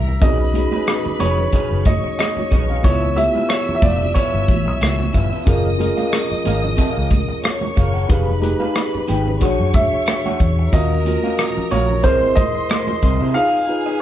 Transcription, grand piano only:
0.00 0.24 E5 loud
0.22 1.23 D#5 medium
1.20 1.88 C#5 medium
1.86 2.17 D#5 medium
2.19 2.86 D#5 medium
2.84 3.18 C#5 medium
3.17 3.51 E5 medium
3.49 3.77 C#5 medium
3.75 3.82 E5 medium
3.83 4.17 D5 medium
4.14 5.10 C#5 medium
9.74 10.76 E5 medium
10.74 11.75 D#5 medium
11.71 12.05 C#5 medium
12.04 12.38 C5 medium
12.36 13.38 D#5 loud
13.34 14.02 F5 loud

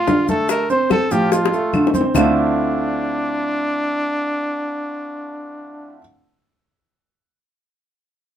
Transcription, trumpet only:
0.00 0.27 F4 medium
0.30 0.49 A4 medium
0.50 0.69 A#4 medium
0.71 0.90 C5 medium
0.92 1.13 A4 medium
1.12 1.32 G4 medium
1.32 1.90 F4 medium
2.15 5.99 D4 medium

